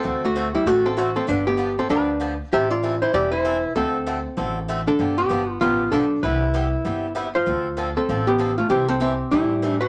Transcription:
Already playing: C4 A4
0.03 D2 D3 A3 C4 F#4 A4
0.25 A3 F#4
0.35 D3 A3 C4 F#4 A4
0.55 G3 E4
0.66 A1 D3 A3 C4 F#4 A4
0.86 C4 A4
0.97 D3 A3 C4 F#4 A4 C5
1.16 C4 A4
1.27 G1 D3 F3 B3 D4 G4 B4
1.47 B3 G4
1.57 D3 F3 B3 D4 G4
1.79 C4 A4
1.89 D2 D3 F3 B3 D4 G4 B4
2.20 D3 F3 B3 D4 G4
2.52 A1 E3 G3 C4 E4 G4 A4 E5
2.70 F4 D5
2.83 E3 G3 C4 E4 A4
3.02 E4 C5
3.13 E1 E3 G3 C4 E4 G4 A4 D5
3.32 E4 C5
3.45 E3 G3 C4 E4 A4
3.75 D2 D3 A3 C4 F#4 A4
4.06 D3 A3 C4 F#4 A4
4.37 A1 D3 A3 C4 F#4 A4
4.68 D3 A3 C4 F#4 A4
4.87 D4 A4
4.99 G1 D3 F3 B3 D4 G4
5.18 B3 G4
5.29 G1 D3 F3 B3 D4 G4
5.61 A1 D3 F3 B3 D4 F4 G4
5.92 B1 D3 F3 B3 D4 G4 A4
6.23 C2 C3 G3 B3 E4 G4 B4
6.54 C3 G3 B3 E4 G4
6.85 G1 C3 G3 B3 E4 G4
7.15 C3 G3 B3 E4 G4
7.35 F4 C5
7.46 D2 D3 F3 C4 D4 A4
7.77 D3 F3 C4 D4 A4
7.97 C4 A4
8.09 A1 D3 F3 C4 D4 A4
8.27 B3 G4
8.38 D3 F3 C4 D4 A4
8.58 A3 F4
8.69 C2 C3 E3 A3 C4 E4 G4
8.88 C4 A4
9.00 C3 E3 A3 C4 E4 G4
9.31 A2 C3 E3 G3 A3 E4 G4
9.62 C3 E3 A3 E4 G4
9.81 F#4 C5

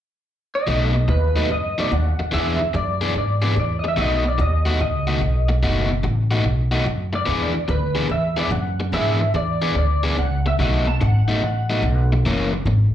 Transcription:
0.55 D#5
0.67 B1 B2 F#3 A3 D#4
0.95 muted overdriven electric guitar stroke
1.08 D#2 B4, muted overdriven electric guitar stroke
1.36 B2 F#3 A3 D#4
1.50 F#2 D#5, muted overdriven electric guitar stroke
1.78 B2 F#3 A3 D#4 D5, muted upright bass stroke
1.91 D#2 F#5, muted overdriven electric guitar stroke
2.19 muted overdriven electric guitar stroke, muted upright bass stroke
2.32 E2 E3 B3 D4 G#4 E5
2.61 muted overdriven electric guitar stroke
2.74 F#2 D5, muted overdriven electric guitar stroke
3.01 E3 B3 D4 G#4
3.15 G#2 D5, muted overdriven electric guitar stroke
3.42 E3 B3 D4 G#4
3.55 E2, muted overdriven electric guitar stroke
3.60 D5
3.79 D#5
3.84 muted overdriven electric guitar stroke
3.88 E5
3.97 B1 B2 A3 D#4 F#4
4.01 D#5
4.25 D5, muted overdriven electric guitar stroke
4.38 D#2 D#5, muted overdriven electric guitar stroke
4.66 B2 A3 D#4 F#4
4.80 C#2 D#5, muted overdriven electric guitar stroke
5.07 B2 A3 D#4 F#4
5.21 B1, muted overdriven electric guitar stroke
5.49 muted overdriven electric guitar stroke
5.63 F#1 B2 A3 D#4 F#4
5.91 muted overdriven electric guitar stroke
6.03 A1, muted overdriven electric guitar stroke
6.31 B2 A3 D#4 F#4
6.44 B1, muted overdriven electric guitar stroke
6.72 B2 A3 D#4 F#4
6.86 F#2, muted overdriven electric guitar stroke
7.13 D5, muted overdriven electric guitar stroke
7.26 E2 E3 B3 D4 G#4
7.54 muted overdriven electric guitar stroke
7.68 D2 B4, muted overdriven electric guitar stroke
7.95 E3 B3 D4 G#4
8.09 E2 E5, muted overdriven electric guitar stroke
8.37 E3 B3 D4 G#4 D5
8.51 F#2 F#5, muted overdriven electric guitar stroke
8.80 muted overdriven electric guitar stroke
8.92 G#2 E3 B3 D4 G#4 E5
9.21 muted overdriven electric guitar stroke
9.34 E2 D5, muted overdriven electric guitar stroke
9.62 E3 B3 D4 G#4
9.75 D2 D5, muted overdriven electric guitar stroke
10.04 E3 B3 D4 G#4
10.18 C#2 F#5, muted overdriven electric guitar stroke
10.46 E5, muted overdriven electric guitar stroke
10.59 B1 B2 F#3 A3 D#4 F#5
10.87 A5, muted overdriven electric guitar stroke
11.01 G#1 F#5, muted overdriven electric guitar stroke
11.28 B2 F#3 A3 D#4, muted upright bass stroke
11.42 A1 F#5, muted overdriven electric guitar stroke
11.70 B2 F#3 A3 D#4
11.82 B1, muted overdriven electric guitar stroke
12.12 muted overdriven electric guitar stroke
12.25 F#1 F#2 E3 A#3 C#4
12.53 muted overdriven electric guitar stroke
12.65 G#1, muted overdriven electric guitar stroke

